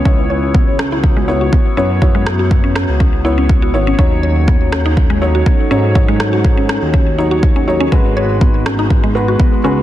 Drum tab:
SD |---r----|-r-r----|---r----|-r-r----|
BD |o-o-o-o-|o-o-o-o-|o-o-o-o-|o-o-o-o-|

SD |---r----|
BD |o-o-o-o-|